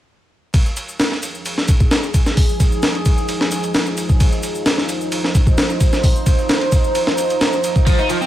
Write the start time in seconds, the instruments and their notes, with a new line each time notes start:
0.54 ambient pad F3 D#4 G#4, kick, ride, shaker
0.66 shaker
0.76 ride, shaker
0.89 shaker
0.99 snare, ride, shaker
1.12 snare
1.23 ride, shaker
1.35 shaker
1.45 ride, shaker
1.58 snare
1.68 kick, ride, shaker
1.80 kick, shaker
1.91 snare, ride, shaker
2.03 shaker
2.14 kick, ride, shaker
2.26 snare, shaker
2.37 kick, open hi-hat, shaker
2.49 shaker
2.60 kick, ride, shaker
2.72 shaker
2.82 snare, ride, shaker
2.95 ride
3.05 kick, ride, shaker
3.18 shaker
3.28 ride, shaker
3.41 snare
3.51 ride, shaker
3.63 ride, shaker
3.74 snare, ride, shaker
3.86 shaker
3.97 ride, shaker
4.09 kick, shaker
4.20 ambient pad C5, kick, ride, shaker
4.32 shaker
4.43 ride, shaker
4.55 shaker
4.66 snare, ride, shaker
4.78 snare
4.89 ride, shaker
5.01 shaker
5.12 ride, shaker
5.24 snare
5.35 kick, ride, shaker
5.47 kick, shaker
5.58 snare, ride, shaker
5.70 shaker
5.80 kick, ride, shaker
5.92 snare, shaker
6.03 kick, open hi-hat, shaker
6.15 shaker
6.26 kick, ride, shaker
6.38 shaker
6.49 snare, ride, shaker
6.61 ride
6.72 kick, ride, shaker
6.84 shaker
6.95 ride, shaker
7.07 snare
7.18 ride, shaker
7.30 ride, shaker
7.41 snare, ride, shaker
7.53 shaker
7.64 ride, shaker
7.76 kick, shaker
7.86 overdriven electric guitar F3, ambient pad G#4, kick, ride, shaker
7.98 overdriven electric guitar D#4, shaker
8.09 overdriven electric guitar F3, ride, shaker
8.21 overdriven electric guitar C4, shaker